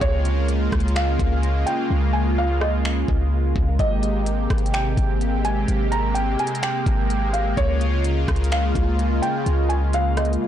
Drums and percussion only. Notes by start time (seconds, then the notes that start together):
0.01 kick, closed hi-hat
0.25 closed hi-hat
0.48 closed hi-hat
0.72 kick, cross-stick, closed hi-hat
0.80 closed hi-hat
0.88 closed hi-hat
0.96 finger snap, closed hi-hat
1.19 kick, closed hi-hat
1.43 closed hi-hat
1.67 closed hi-hat
2.61 cross-stick
2.85 finger snap
3.08 kick
3.56 kick
3.79 kick, closed hi-hat
4.03 closed hi-hat
4.26 closed hi-hat
4.50 kick, cross-stick, closed hi-hat
4.58 closed hi-hat
4.66 closed hi-hat
4.74 finger snap, closed hi-hat
4.97 kick, closed hi-hat
5.21 closed hi-hat
5.45 closed hi-hat
5.68 closed hi-hat
5.92 closed hi-hat
6.15 closed hi-hat
6.39 closed hi-hat
6.47 closed hi-hat
6.55 closed hi-hat
6.63 finger snap, closed hi-hat
6.86 kick, closed hi-hat
7.10 closed hi-hat
7.34 closed hi-hat
7.57 kick, closed hi-hat
7.81 closed hi-hat
8.04 closed hi-hat
8.28 kick, cross-stick, closed hi-hat
8.36 closed hi-hat
8.44 closed hi-hat
8.52 finger snap, closed hi-hat
8.75 kick, closed hi-hat
8.99 closed hi-hat
9.23 closed hi-hat
9.46 closed hi-hat
9.70 closed hi-hat
9.93 closed hi-hat
10.17 cross-stick, closed hi-hat, open hi-hat
10.25 closed hi-hat
10.33 closed hi-hat